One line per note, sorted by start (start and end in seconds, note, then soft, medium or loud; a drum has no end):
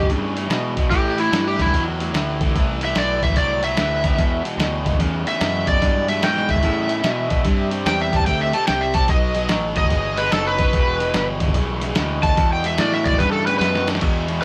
0.03 kick medium
0.08 0.33 E2 loud
0.08 0.49 G2 medium
0.08 0.33 C#3 medium
0.08 kick medium
0.08 open hi-hat medium
0.35 0.48 E2 medium
0.35 0.49 C#3 medium
0.35 open hi-hat medium
0.49 0.73 E2 medium
0.49 0.74 B2 medium
0.49 0.90 B2 medium
0.49 snare loud
0.49 open hi-hat medium
0.77 0.90 E2 medium
0.77 0.90 B2 medium
0.77 kick medium
0.77 open hi-hat medium
0.90 1.15 A2 medium
0.90 1.31 A2 medium
0.90 1.15 E3 medium
0.90 1.17 G4 loud
0.90 kick medium
0.90 open hi-hat medium
1.17 1.30 A2 medium
1.17 1.30 E3 medium
1.17 1.45 E4 medium
1.17 open hi-hat medium
1.31 1.72 G2 medium
1.31 1.56 A2 medium
1.31 1.56 E3 medium
1.31 snare loud
1.31 open hi-hat medium
1.48 1.60 G4 medium
1.58 1.71 A2 medium
1.58 1.71 E3 medium
1.58 1.82 E4 medium
1.58 kick medium
1.58 open hi-hat medium
1.66 kick medium
1.74 2.13 E2 medium
1.74 1.97 A2 medium
1.74 1.97 F#3 loud
1.74 kick medium
1.74 open hi-hat medium
2.00 2.12 A2 medium
2.00 2.13 F#3 medium
2.00 open hi-hat medium
2.13 2.53 D2 medium
2.13 2.37 A2 medium
2.13 2.38 E3 medium
2.13 snare loud
2.13 open hi-hat medium
2.41 2.53 A2 medium
2.41 2.54 E3 medium
2.41 kick medium
2.41 open hi-hat medium
2.55 2.95 C2 medium
2.55 2.78 A2 medium
2.55 2.79 E3 loud
2.55 kick medium
2.55 open hi-hat medium
2.81 2.94 A2 medium
2.81 2.94 E3 medium
2.81 2.97 E5 medium
2.81 open hi-hat medium
2.95 3.35 B1 medium
2.95 3.20 A2 medium
2.95 3.20 E3 medium
2.95 3.22 D5 medium
2.95 snare loud
2.95 open hi-hat medium
3.22 3.34 A2 medium
3.22 3.35 E3 medium
3.22 3.36 E5 medium
3.22 kick medium
3.22 open hi-hat soft
3.30 kick medium
3.36 3.76 C2 medium
3.36 3.60 A2 medium
3.36 3.60 F#3 loud
3.36 3.62 D5 medium
3.36 kick medium
3.36 open hi-hat medium
3.63 3.76 A2 medium
3.63 3.76 F#3 medium
3.63 4.43 E5 loud
3.63 open hi-hat medium
3.77 4.17 D2 loud
3.77 4.01 A2 medium
3.77 4.01 E3 loud
3.77 snare loud
3.77 open hi-hat medium
4.04 4.16 A2 medium
4.04 4.17 E3 medium
4.04 kick medium
4.04 open hi-hat medium
4.17 4.41 E2 medium
4.17 4.43 E2 medium
4.17 4.42 B2 medium
4.17 kick loud
4.17 open hi-hat medium
4.43 4.55 E2 medium
4.43 4.56 B2 medium
4.43 muted picked electric bass stroke soft
4.43 open hi-hat medium
4.56 4.98 D2 loud
4.56 4.81 E2 medium
4.56 4.82 B2 loud
4.56 open hi-hat medium
4.60 snare loud
4.83 4.97 E2 medium
4.83 4.97 B2 medium
4.83 kick medium
4.83 open hi-hat medium
4.93 kick medium
4.98 5.23 E2 medium
4.98 5.25 E2 medium
4.98 5.23 C#3 loud
4.98 kick medium
4.98 open hi-hat medium
5.25 5.38 E2 medium
5.25 5.39 C#3 medium
5.25 5.67 E5 loud
5.25 muted picked electric bass stroke soft
5.25 open hi-hat medium
5.40 5.64 E2 medium
5.40 5.81 F#2 medium
5.40 5.64 B2 medium
5.40 snare loud
5.40 open hi-hat medium
5.66 5.79 E2 medium
5.66 5.79 B2 medium
5.66 6.07 D5 medium
5.66 kick medium
5.66 open hi-hat medium
5.80 6.05 E2 medium
5.80 6.21 G2 medium
5.80 6.05 B2 loud
5.80 kick medium
5.80 open hi-hat medium
6.08 6.19 E2 medium
6.08 6.20 B2 medium
6.08 6.22 E5 medium
6.08 open hi-hat medium
6.21 6.45 E2 medium
6.21 6.63 G#2 loud
6.21 6.46 B2 medium
6.21 6.49 G5 loud
6.21 snare loud
6.21 open hi-hat medium
6.36 snare soft
6.48 6.61 E2 medium
6.48 6.62 B2 medium
6.48 7.69 E5 loud
6.48 kick medium
6.48 open hi-hat soft
6.56 kick medium
6.62 6.87 E2 medium
6.62 7.03 A2 medium
6.62 6.87 C#3 medium
6.62 kick medium
6.62 open hi-hat medium
6.88 7.01 E2 medium
6.88 7.02 C#3 medium
6.88 open hi-hat medium
7.02 7.27 E2 medium
7.02 7.27 B2 medium
7.02 7.44 B2 medium
7.02 snare loud
7.02 open hi-hat medium
7.29 7.43 E2 medium
7.29 7.43 B2 medium
7.29 kick medium
7.29 open hi-hat medium
7.44 7.85 G2 medium
7.44 7.68 C3 medium
7.44 7.69 G3 loud
7.44 kick loud
7.44 open hi-hat medium
7.70 7.84 C3 medium
7.70 7.84 G3 medium
7.70 open hi-hat medium
7.85 8.26 E2 loud
7.85 8.10 C3 medium
7.85 8.10 G3 medium
7.85 8.00 G5 loud
7.85 snare loud
7.85 open hi-hat medium
8.01 8.14 E5 medium
8.12 8.25 C3 medium
8.12 8.26 G3 medium
8.12 kick medium
8.12 open hi-hat medium
8.16 8.27 A5 loud
8.16 kick medium
8.26 8.52 D2 medium
8.26 8.51 C3 medium
8.26 8.51 A3 loud
8.26 8.40 G5 medium
8.26 kick medium
8.26 open hi-hat medium
8.41 8.54 E5 medium
8.53 8.65 C3 medium
8.53 8.67 A3 medium
8.53 8.67 A5 medium
8.53 muted picked electric bass stroke soft
8.53 open hi-hat medium
8.67 9.09 C2 medium
8.67 8.91 C3 medium
8.67 8.92 G3 medium
8.67 8.81 G5 medium
8.67 snare loud
8.67 open hi-hat medium
8.81 8.95 E5 medium
8.94 9.08 C3 medium
8.94 9.08 G3 medium
8.94 9.08 A5 loud
8.94 kick medium
8.94 open hi-hat medium
9.08 9.49 B1 medium
9.08 9.33 B2 medium
9.08 9.33 F#3 loud
9.08 9.49 D#5 loud
9.08 kick loud
9.08 open hi-hat medium
9.35 9.48 B2 medium
9.35 9.48 F#3 medium
9.35 open hi-hat medium
9.49 9.90 A1 loud
9.49 9.74 B2 medium
9.49 9.74 F#3 medium
9.49 snare loud
9.49 open hi-hat medium
9.76 9.89 B2 medium
9.76 9.90 F#3 medium
9.76 10.18 D#5 loud
9.76 kick medium
9.76 open hi-hat medium
9.84 kick medium
9.90 10.31 G1 medium
9.90 10.15 B2 medium
9.90 10.15 G#3 loud
9.90 kick medium
9.90 open hi-hat medium
10.17 10.29 B2 medium
10.17 10.31 G#3 medium
10.17 10.32 B4 loud
10.17 open hi-hat medium
10.30 10.72 F#1 medium
10.30 10.56 B2 medium
10.30 10.56 F#3 loud
10.30 10.46 A4 medium
10.30 snare loud
10.30 open hi-hat medium
10.47 11.26 B4 medium
10.58 10.71 B2 medium
10.58 10.72 F#3 medium
10.58 kick medium
10.58 open hi-hat medium
10.72 11.13 E1 medium
10.72 10.97 E2 medium
10.72 10.97 B2 loud
10.72 kick loud
10.72 open hi-hat medium
11.00 11.13 E2 medium
11.00 11.13 B2 medium
11.00 open hi-hat medium
11.14 11.54 G1 loud
11.14 11.38 E2 medium
11.14 11.39 B2 loud
11.14 snare loud
11.14 open hi-hat medium
11.40 11.54 E2 medium
11.40 11.54 B2 medium
11.40 kick medium
11.40 open hi-hat medium
11.48 kick medium
11.54 11.95 B1 medium
11.54 11.80 E2 loud
11.54 11.80 C#3 medium
11.54 kick medium
11.54 open hi-hat medium
11.81 11.95 E2 medium
11.81 11.95 C#3 loud
11.81 open hi-hat medium
11.95 12.36 D2 loud
11.95 12.21 E2 medium
11.95 12.21 B2 loud
11.95 snare loud
11.95 open hi-hat medium
12.22 12.36 E2 medium
12.22 12.36 B2 medium
12.22 12.50 A5 loud
12.22 kick medium
12.22 open hi-hat medium
12.37 12.62 E2 medium
12.37 12.78 E2 medium
12.37 12.62 B2 medium
12.37 kick loud
12.37 open hi-hat medium
12.53 12.66 G5 loud
12.64 12.77 E2 medium
12.64 12.77 B2 medium
12.64 12.79 E5 loud
12.64 open hi-hat medium
12.78 13.03 E2 medium
12.78 13.19 A2 loud
12.78 13.03 B2 loud
12.78 12.93 D5 medium
12.78 snare loud
12.78 open hi-hat medium
12.92 13.06 E5 loud
12.92 snare soft
13.04 13.18 E2 medium
13.04 13.19 B2 medium
13.04 13.19 D5 loud
13.04 kick medium
13.04 open hi-hat medium
13.13 kick medium
13.18 13.44 E2 medium
13.18 13.60 G2 medium
13.18 13.44 C#3 loud
13.18 13.32 B4 medium
13.18 kick medium
13.18 open hi-hat medium
13.32 13.46 A4 loud
13.47 13.59 E2 medium
13.47 13.60 C#3 medium
13.47 13.57 B4 medium
13.47 open hi-hat medium
13.58 13.85 E2 medium
13.58 14.01 F#2 loud
13.58 13.85 B2 medium
13.58 13.86 B4 loud
13.58 snare medium
13.58 open hi-hat medium
13.75 snare medium
13.88 14.00 E2 medium
13.88 14.01 B2 medium
13.88 snare loud
13.88 open hi-hat medium
13.95 snare medium
14.01 14.26 E2 medium
14.01 14.42 E2 medium
14.01 14.27 B2 medium
14.01 kick loud
14.01 crash loud
14.01 ride medium
14.28 14.42 E2 medium
14.28 14.42 B2 medium
14.28 ride medium